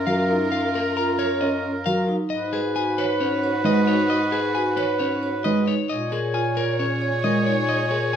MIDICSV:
0, 0, Header, 1, 7, 480
1, 0, Start_track
1, 0, Tempo, 447761
1, 561, Time_signature, 4, 2, 24, 8
1, 8751, End_track
2, 0, Start_track
2, 0, Title_t, "Clean electric guitar"
2, 0, Program_c, 0, 27
2, 71, Note_on_c, 0, 77, 76
2, 389, Note_off_c, 0, 77, 0
2, 554, Note_on_c, 0, 77, 74
2, 807, Note_on_c, 0, 70, 67
2, 870, Note_off_c, 0, 77, 0
2, 1037, Note_on_c, 0, 82, 61
2, 1115, Note_off_c, 0, 70, 0
2, 1272, Note_on_c, 0, 73, 79
2, 1351, Note_off_c, 0, 82, 0
2, 1510, Note_on_c, 0, 75, 62
2, 1589, Note_off_c, 0, 73, 0
2, 1829, Note_off_c, 0, 75, 0
2, 1991, Note_on_c, 0, 77, 77
2, 2309, Note_off_c, 0, 77, 0
2, 2465, Note_on_c, 0, 75, 77
2, 2709, Note_on_c, 0, 68, 67
2, 2787, Note_off_c, 0, 75, 0
2, 2956, Note_on_c, 0, 80, 67
2, 3028, Note_off_c, 0, 68, 0
2, 3196, Note_on_c, 0, 71, 82
2, 3271, Note_off_c, 0, 80, 0
2, 3435, Note_on_c, 0, 73, 63
2, 3511, Note_off_c, 0, 71, 0
2, 3750, Note_off_c, 0, 73, 0
2, 3917, Note_on_c, 0, 75, 76
2, 4153, Note_on_c, 0, 73, 68
2, 4231, Note_off_c, 0, 75, 0
2, 4392, Note_on_c, 0, 75, 74
2, 4470, Note_off_c, 0, 73, 0
2, 4632, Note_on_c, 0, 68, 68
2, 4710, Note_off_c, 0, 75, 0
2, 4875, Note_on_c, 0, 80, 63
2, 4949, Note_off_c, 0, 68, 0
2, 5113, Note_on_c, 0, 71, 75
2, 5190, Note_off_c, 0, 80, 0
2, 5352, Note_on_c, 0, 73, 66
2, 5430, Note_off_c, 0, 71, 0
2, 5669, Note_off_c, 0, 73, 0
2, 5835, Note_on_c, 0, 75, 76
2, 6083, Note_on_c, 0, 73, 64
2, 6151, Note_off_c, 0, 75, 0
2, 6319, Note_on_c, 0, 75, 71
2, 6393, Note_off_c, 0, 73, 0
2, 6562, Note_on_c, 0, 68, 60
2, 6632, Note_off_c, 0, 75, 0
2, 6798, Note_on_c, 0, 80, 55
2, 6873, Note_off_c, 0, 68, 0
2, 7041, Note_on_c, 0, 70, 72
2, 7112, Note_off_c, 0, 80, 0
2, 7283, Note_on_c, 0, 73, 54
2, 7353, Note_off_c, 0, 70, 0
2, 7593, Note_off_c, 0, 73, 0
2, 7760, Note_on_c, 0, 75, 65
2, 8001, Note_on_c, 0, 73, 55
2, 8072, Note_off_c, 0, 75, 0
2, 8240, Note_on_c, 0, 75, 67
2, 8313, Note_off_c, 0, 73, 0
2, 8477, Note_on_c, 0, 68, 56
2, 8552, Note_off_c, 0, 75, 0
2, 8718, Note_on_c, 0, 80, 52
2, 8751, Note_off_c, 0, 68, 0
2, 8751, Note_off_c, 0, 80, 0
2, 8751, End_track
3, 0, Start_track
3, 0, Title_t, "Oboe"
3, 0, Program_c, 1, 68
3, 0, Note_on_c, 1, 70, 64
3, 2196, Note_off_c, 1, 70, 0
3, 2478, Note_on_c, 1, 71, 74
3, 6036, Note_off_c, 1, 71, 0
3, 6318, Note_on_c, 1, 73, 61
3, 8751, Note_off_c, 1, 73, 0
3, 8751, End_track
4, 0, Start_track
4, 0, Title_t, "Vibraphone"
4, 0, Program_c, 2, 11
4, 83, Note_on_c, 2, 70, 75
4, 321, Note_on_c, 2, 63, 57
4, 393, Note_off_c, 2, 70, 0
4, 633, Note_off_c, 2, 63, 0
4, 799, Note_on_c, 2, 70, 60
4, 1041, Note_on_c, 2, 65, 64
4, 1112, Note_off_c, 2, 70, 0
4, 1278, Note_on_c, 2, 73, 81
4, 1352, Note_off_c, 2, 65, 0
4, 1592, Note_off_c, 2, 73, 0
4, 1997, Note_on_c, 2, 70, 80
4, 2237, Note_on_c, 2, 63, 61
4, 2311, Note_off_c, 2, 70, 0
4, 2551, Note_off_c, 2, 63, 0
4, 2718, Note_on_c, 2, 71, 67
4, 2962, Note_on_c, 2, 66, 65
4, 3031, Note_off_c, 2, 71, 0
4, 3201, Note_on_c, 2, 73, 81
4, 3273, Note_off_c, 2, 66, 0
4, 3513, Note_off_c, 2, 73, 0
4, 3683, Note_on_c, 2, 73, 62
4, 3923, Note_on_c, 2, 71, 83
4, 3993, Note_off_c, 2, 73, 0
4, 4165, Note_on_c, 2, 63, 62
4, 4233, Note_off_c, 2, 71, 0
4, 4474, Note_off_c, 2, 63, 0
4, 4643, Note_on_c, 2, 71, 61
4, 4882, Note_on_c, 2, 66, 65
4, 4953, Note_off_c, 2, 71, 0
4, 5120, Note_on_c, 2, 73, 83
4, 5193, Note_off_c, 2, 66, 0
4, 5432, Note_off_c, 2, 73, 0
4, 5605, Note_on_c, 2, 73, 59
4, 5841, Note_on_c, 2, 71, 78
4, 5914, Note_off_c, 2, 73, 0
4, 6083, Note_on_c, 2, 63, 57
4, 6153, Note_off_c, 2, 71, 0
4, 6393, Note_off_c, 2, 63, 0
4, 6561, Note_on_c, 2, 70, 55
4, 6800, Note_on_c, 2, 65, 62
4, 6872, Note_off_c, 2, 70, 0
4, 7043, Note_on_c, 2, 73, 69
4, 7112, Note_off_c, 2, 65, 0
4, 7353, Note_off_c, 2, 73, 0
4, 7523, Note_on_c, 2, 73, 53
4, 7761, Note_on_c, 2, 70, 67
4, 7833, Note_off_c, 2, 73, 0
4, 8002, Note_on_c, 2, 63, 54
4, 8073, Note_off_c, 2, 70, 0
4, 8313, Note_off_c, 2, 63, 0
4, 8479, Note_on_c, 2, 70, 52
4, 8751, Note_off_c, 2, 70, 0
4, 8751, End_track
5, 0, Start_track
5, 0, Title_t, "Violin section"
5, 0, Program_c, 3, 48
5, 0, Note_on_c, 3, 65, 64
5, 0, Note_on_c, 3, 70, 65
5, 2196, Note_off_c, 3, 70, 0
5, 2197, Note_off_c, 3, 65, 0
5, 2474, Note_on_c, 3, 66, 73
5, 2474, Note_on_c, 3, 71, 66
5, 6034, Note_off_c, 3, 66, 0
5, 6034, Note_off_c, 3, 71, 0
5, 6320, Note_on_c, 3, 73, 70
5, 6321, Note_on_c, 3, 68, 66
5, 8751, Note_off_c, 3, 68, 0
5, 8751, Note_off_c, 3, 73, 0
5, 8751, End_track
6, 0, Start_track
6, 0, Title_t, "Grand piano"
6, 0, Program_c, 4, 0
6, 71, Note_on_c, 4, 54, 71
6, 389, Note_off_c, 4, 54, 0
6, 1517, Note_on_c, 4, 61, 60
6, 1831, Note_off_c, 4, 61, 0
6, 1998, Note_on_c, 4, 54, 71
6, 2311, Note_off_c, 4, 54, 0
6, 3434, Note_on_c, 4, 61, 59
6, 3750, Note_off_c, 4, 61, 0
6, 3907, Note_on_c, 4, 56, 76
6, 4228, Note_off_c, 4, 56, 0
6, 5358, Note_on_c, 4, 61, 59
6, 5671, Note_off_c, 4, 61, 0
6, 5848, Note_on_c, 4, 56, 70
6, 6155, Note_off_c, 4, 56, 0
6, 7279, Note_on_c, 4, 61, 56
6, 7592, Note_off_c, 4, 61, 0
6, 7763, Note_on_c, 4, 56, 62
6, 8073, Note_off_c, 4, 56, 0
6, 8751, End_track
7, 0, Start_track
7, 0, Title_t, "Bass clarinet"
7, 0, Program_c, 5, 71
7, 0, Note_on_c, 5, 42, 66
7, 2340, Note_off_c, 5, 42, 0
7, 2476, Note_on_c, 5, 44, 70
7, 6180, Note_off_c, 5, 44, 0
7, 6318, Note_on_c, 5, 46, 65
7, 8751, Note_off_c, 5, 46, 0
7, 8751, End_track
0, 0, End_of_file